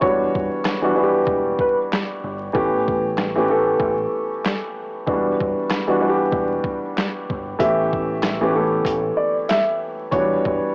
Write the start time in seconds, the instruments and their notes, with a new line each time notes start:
0.01 fingered electric bass E1, upright piano E3 F#3 B3 D4 F#4 C#5, kick
0.08 upright piano G3
0.35 fingered electric bass G1, kick
0.65 snare, clap
0.82 upright piano E3 G3 B3 D4 F#4
0.95 upright piano E3 G3 B3 D4 F#4
1.04 upright piano G4
1.27 fingered electric bass E1, kick
1.59 upright piano B4, kick
1.93 snare, clap
2.24 fingered electric bass G1
2.53 fingered electric bass A1, upright piano E3 A3 B3 C#4 G4, kick
2.88 kick
3.18 snare, clap
3.35 upright piano E3 A3 B3 C#4 G4
3.49 upright piano E3 A3 B3 C#4 A4
3.80 fingered electric bass A1, kick
4.45 snare, clap
5.06 fingered electric bass E1, upright piano E3 F#3 B3 D4 F#4, kick
5.13 upright piano G3
5.40 fingered electric bass G1, kick
5.70 snare, clap
5.87 upright piano E3 G3 B3 D4 F#4
6.00 upright piano E3 G3 B3 D4 F#4
6.09 upright piano G4
6.32 fingered electric bass E1, kick
6.64 kick
6.98 snare, clap
7.30 fingered electric bass G1, kick
7.58 fingered electric bass A1, upright piano E3 A3 B3 C#4 G4 E5, kick, closed hi-hat
7.93 kick
8.23 snare, clap, closed hi-hat
8.41 upright piano E3 A3 B3 C#4 G4
8.54 upright piano E3 A3 B3 C#4 A4
8.85 fingered electric bass A1, kick, closed hi-hat
9.17 upright piano D5
9.49 upright piano E5, snare, clap, closed hi-hat
10.11 fingered electric bass E1, upright piano E3 F#3 B3 D4 F#4 C#5, kick, closed hi-hat
10.19 upright piano G3
10.46 fingered electric bass G1, kick